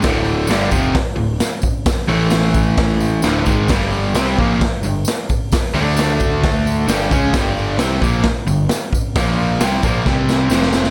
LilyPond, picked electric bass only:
\new Staff \with { instrumentName = "Picked electric bass" } { \clef bass \time 4/4 \key g \major \tempo 4 = 132 d,,4 g,,8 f,,8 r8 d,,8 r4 | r8 a,,2~ a,,8 d,,8 gis,,8 | g,,4 c,8 bes,,8 r8 g,,8 r4 | r8 d,2~ d,8 g,,8 cis,8 |
g,,4 c,8 bes,,8 r8 g,,8 r4 | bes,,4 c,8 bes,,8 c,4 f,,4 | }